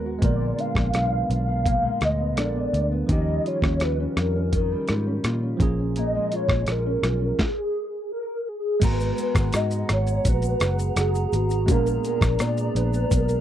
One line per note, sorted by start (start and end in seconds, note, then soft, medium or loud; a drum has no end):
0.00 0.18 D#2 medium
0.00 0.17 G#3 soft
0.00 0.40 G#3 medium
0.00 0.19 B3 soft
0.00 0.75 B3 medium
0.00 0.23 F#4 soft
0.00 0.23 A#4 soft
0.00 0.43 A#4 medium
0.06 0.30 F#4 soft
0.19 0.51 A#1 medium
0.19 2.33 D3 medium
0.19 2.32 G#3 medium
0.19 2.32 B3 medium
0.19 kick loud
0.19 closed hi-hat medium
0.23 1.65 A#2 medium
0.23 2.34 A#4 medium
0.23 0.61 D5 loud
0.40 1.82 G#3 medium
0.58 0.93 D4 medium
0.58 1.31 F5 loud
0.58 closed hi-hat soft
0.75 0.90 A#1 medium
0.75 1.11 B3 medium
0.75 kick medium
0.75 cross-stick medium
0.94 1.23 B1 medium
0.94 1.30 D4 medium
0.94 cross-stick medium
0.94 closed hi-hat medium
1.12 1.47 B3 medium
1.30 1.87 B1 medium
1.30 2.02 D4 medium
1.30 2.05 F5 loud
1.30 closed hi-hat medium
1.48 2.19 B3 medium
1.66 3.17 A#2 medium
1.66 kick medium
1.66 closed hi-hat medium
1.83 3.16 G#3 medium
2.01 2.38 D2 medium
2.01 2.40 D#5 loud
2.01 cross-stick medium
2.01 closed hi-hat soft
2.20 2.54 B3 medium
2.36 2.66 A#1 medium
2.36 3.08 G#3 soft
2.36 3.09 B3 soft
2.36 2.72 D4 medium
2.36 3.09 D4 soft
2.36 2.45 A4 soft
2.36 2.92 D5 loud
2.36 cross-stick medium
2.36 closed hi-hat medium
2.45 3.13 A#4 soft
2.55 2.90 B3 medium
2.73 3.02 D2 medium
2.73 3.16 D4 medium
2.73 closed hi-hat soft
2.92 3.17 B3 medium
3.07 3.38 D#2 medium
3.07 4.52 D#3 medium
3.07 5.55 F3 medium
3.07 5.56 C#4 medium
3.07 5.56 D#4 medium
3.07 kick loud
3.07 closed hi-hat medium
3.11 5.57 G4 medium
3.11 3.48 D#5 loud
3.27 4.70 G3 medium
3.45 3.80 F4 medium
3.45 3.84 C#5 medium
3.45 closed hi-hat soft
3.62 4.06 D#2 medium
3.62 3.99 C#4 medium
3.62 kick medium
3.62 cross-stick medium
3.80 4.15 F4 medium
3.80 4.17 B4 medium
3.80 cross-stick medium
3.80 closed hi-hat medium
4.00 4.35 C#4 medium
4.16 4.74 F2 medium
4.16 4.89 F4 medium
4.16 5.57 A#4 medium
4.16 cross-stick medium
4.16 closed hi-hat soft
4.36 5.06 C#4 medium
4.53 5.68 D#3 medium
4.53 kick medium
4.53 closed hi-hat medium
4.71 5.67 G3 medium
4.88 5.18 G#2 medium
4.88 5.25 F4 medium
4.88 cross-stick medium
4.88 closed hi-hat soft
5.07 5.42 C#4 medium
5.24 5.53 A#2 medium
5.24 6.32 F4 medium
5.24 cross-stick medium
5.24 closed hi-hat medium
5.42 5.78 C#4 medium
5.57 6.17 A#1 medium
5.57 5.96 A#2 medium
5.57 7.34 F3 medium
5.57 7.35 A#3 medium
5.57 7.36 C#4 medium
5.57 kick medium
5.57 closed hi-hat soft
5.62 7.37 G#4 medium
5.79 6.49 C#4 medium
5.96 7.47 A#2 medium
5.96 6.37 D#5 loud
5.96 closed hi-hat medium
6.14 7.97 G#3 medium
6.32 6.67 F4 medium
6.32 6.72 C#5 loud
6.32 closed hi-hat soft
6.49 6.63 A#1 medium
6.49 6.85 C#4 medium
6.49 kick medium
6.49 cross-stick medium
6.67 6.96 A#1 medium
6.67 7.02 F4 medium
6.67 cross-stick medium
6.67 closed hi-hat medium
6.71 7.42 A#4 medium
6.86 7.20 C#4 soft
7.03 7.32 B1 medium
7.03 7.46 F4 medium
7.03 cross-stick medium
7.03 closed hi-hat medium
7.21 7.46 C#4 medium
7.39 8.11 G#4 medium
7.39 kick medium
7.39 snare medium
8.11 8.49 A#4 medium
8.48 8.83 G#4 medium
8.80 9.11 G#1 loud
8.80 11.63 G#3 medium
8.80 11.72 G#3 medium
8.80 11.64 B3 medium
8.80 11.65 F#4 medium
8.80 13.41 G#4 medium
8.80 11.37 A#4 medium
8.80 9.16 B4 loud
8.80 11.65 F#5 medium
8.80 13.41 A#5 medium
8.80 kick loud
8.80 closed hi-hat medium
8.80 crash loud
8.80 shaker medium
8.85 11.66 A#5 medium
9.00 shaker soft
9.18 11.34 B3 medium
9.18 9.56 B4 medium
9.18 closed hi-hat soft
9.18 shaker medium
9.18 shaker soft
9.35 9.50 G#1 medium
9.35 kick medium
9.35 cross-stick medium
9.35 shaker soft
9.35 shaker medium
9.53 9.83 G#2 loud
9.53 10.25 F#4 medium
9.53 9.94 D#5 medium
9.53 cross-stick medium
9.53 closed hi-hat medium
9.53 shaker medium
9.71 shaker medium
9.71 shaker soft
9.89 10.18 G#1 medium
9.89 10.27 C#5 medium
9.89 cross-stick medium
9.89 closed hi-hat medium
9.89 shaker medium
10.07 shaker medium
10.07 shaker soft
10.25 10.54 A#1 medium
10.25 10.97 F#4 medium
10.25 10.94 B4 loud
10.25 kick medium
10.25 closed hi-hat medium
10.25 shaker medium
10.42 shaker medium
10.44 shaker soft
10.60 10.89 F#1 medium
10.60 cross-stick medium
10.60 closed hi-hat soft
10.60 shaker soft
10.79 shaker medium
10.79 shaker soft
10.96 11.25 F#1 medium
10.96 11.69 F#4 medium
10.96 11.36 G#4 medium
10.96 cross-stick medium
10.96 closed hi-hat medium
10.96 shaker medium
11.15 shaker medium
11.15 shaker soft
11.33 11.68 G#1 medium
11.33 12.40 B3 medium
11.33 11.72 F#4 medium
11.33 closed hi-hat medium
11.33 shaker soft
11.33 shaker medium
11.50 shaker soft
11.50 shaker medium
11.66 11.97 A#1 loud
11.66 13.41 A#2 medium
11.66 13.41 G#3 medium
11.66 13.41 B3 medium
11.66 13.41 D4 medium
11.66 13.41 D5 medium
11.66 kick loud
11.66 closed hi-hat medium
11.66 shaker medium
11.70 13.41 A#3 medium
11.70 12.75 D4 medium
11.70 12.05 A#4 loud
11.86 shaker soft
12.04 13.41 G#3 medium
12.04 12.42 A#4 medium
12.04 closed hi-hat soft
12.04 shaker soft
12.21 12.36 A#1 medium
12.21 kick medium
12.21 cross-stick medium
12.21 shaker soft
12.39 12.68 A#2 loud
12.39 13.10 B3 medium
12.39 12.78 D5 loud
12.39 cross-stick medium
12.39 closed hi-hat medium
12.39 shaker medium
12.40 shaker medium
12.57 shaker medium
12.57 shaker soft
12.75 13.04 A#1 medium
12.75 13.41 D4 medium
12.75 13.15 B4 medium
12.75 closed hi-hat medium
12.75 shaker medium
12.94 shaker soft
13.11 13.40 B1 medium
13.11 13.41 B3 medium
13.11 13.41 A#4 loud
13.11 kick medium
13.11 closed hi-hat medium
13.11 shaker medium
13.29 shaker medium
13.29 shaker soft